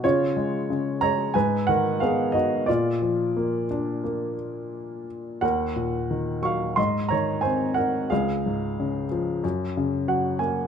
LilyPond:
<<
  \new Staff \with { instrumentName = "Upright piano" } { \time 4/4 \key bes \phrygian \tempo 4 = 90 <f' des''>4. <des'' bes''>8 <ces'' aes''>8 <bes' ges''>8 <aes' f''>8 <ges' ees''>8 | <f' d''>4. r2 r8 | <bes' ges''>4. <f'' des'''>8 <ees'' c'''>8 <des'' bes''>8 <c'' aes''>8 <bes' ges''>8 | <aes' f''>4. r4. ges''8 aes''8 | }
  \new Staff \with { instrumentName = "Upright piano" } { \clef bass \time 4/4 \key bes \phrygian des8 aes8 des8 aes8 aes,8 ees8 ces'8 ees'8 | bes,8 f8 bes8 d'8 bes2 | ees,8 bes,8 ees8 ges8 aes,8 ees8 c'8 ees'8 | des,8 aes,8 des8 f8 ges,8 des8 ges8 bes8 | }
>>